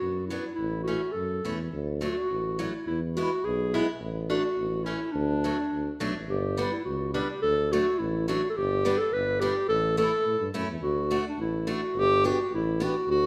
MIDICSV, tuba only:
0, 0, Header, 1, 2, 480
1, 0, Start_track
1, 0, Key_signature, 2, "major"
1, 0, Tempo, 568182
1, 498, Time_signature, 2, 2, 24, 8
1, 5308, Key_signature, 1, "major"
1, 11205, End_track
2, 0, Start_track
2, 0, Title_t, "Tuba"
2, 0, Program_c, 0, 58
2, 12, Note_on_c, 0, 42, 66
2, 326, Note_off_c, 0, 42, 0
2, 493, Note_on_c, 0, 33, 74
2, 807, Note_off_c, 0, 33, 0
2, 969, Note_on_c, 0, 42, 67
2, 1193, Note_off_c, 0, 42, 0
2, 1219, Note_on_c, 0, 40, 64
2, 1435, Note_off_c, 0, 40, 0
2, 1454, Note_on_c, 0, 38, 86
2, 1770, Note_off_c, 0, 38, 0
2, 1943, Note_on_c, 0, 33, 68
2, 2256, Note_off_c, 0, 33, 0
2, 2419, Note_on_c, 0, 40, 78
2, 2732, Note_off_c, 0, 40, 0
2, 2909, Note_on_c, 0, 35, 82
2, 3218, Note_off_c, 0, 35, 0
2, 3381, Note_on_c, 0, 33, 78
2, 3693, Note_off_c, 0, 33, 0
2, 3862, Note_on_c, 0, 33, 75
2, 4174, Note_off_c, 0, 33, 0
2, 4345, Note_on_c, 0, 38, 89
2, 4658, Note_off_c, 0, 38, 0
2, 4828, Note_on_c, 0, 38, 65
2, 4986, Note_off_c, 0, 38, 0
2, 5070, Note_on_c, 0, 35, 67
2, 5177, Note_off_c, 0, 35, 0
2, 5192, Note_on_c, 0, 33, 68
2, 5298, Note_off_c, 0, 33, 0
2, 5304, Note_on_c, 0, 31, 95
2, 5619, Note_off_c, 0, 31, 0
2, 5795, Note_on_c, 0, 37, 77
2, 6106, Note_off_c, 0, 37, 0
2, 6276, Note_on_c, 0, 38, 87
2, 6586, Note_off_c, 0, 38, 0
2, 6758, Note_on_c, 0, 33, 82
2, 7067, Note_off_c, 0, 33, 0
2, 7241, Note_on_c, 0, 31, 91
2, 7547, Note_off_c, 0, 31, 0
2, 7716, Note_on_c, 0, 31, 84
2, 8023, Note_off_c, 0, 31, 0
2, 8186, Note_on_c, 0, 33, 90
2, 8496, Note_off_c, 0, 33, 0
2, 8666, Note_on_c, 0, 45, 68
2, 8774, Note_off_c, 0, 45, 0
2, 8787, Note_on_c, 0, 43, 70
2, 8895, Note_off_c, 0, 43, 0
2, 8905, Note_on_c, 0, 42, 61
2, 9012, Note_off_c, 0, 42, 0
2, 9025, Note_on_c, 0, 40, 64
2, 9126, Note_off_c, 0, 40, 0
2, 9131, Note_on_c, 0, 38, 84
2, 9447, Note_off_c, 0, 38, 0
2, 9618, Note_on_c, 0, 33, 78
2, 9931, Note_off_c, 0, 33, 0
2, 10093, Note_on_c, 0, 31, 93
2, 10405, Note_off_c, 0, 31, 0
2, 10574, Note_on_c, 0, 33, 88
2, 10886, Note_off_c, 0, 33, 0
2, 11050, Note_on_c, 0, 38, 92
2, 11205, Note_off_c, 0, 38, 0
2, 11205, End_track
0, 0, End_of_file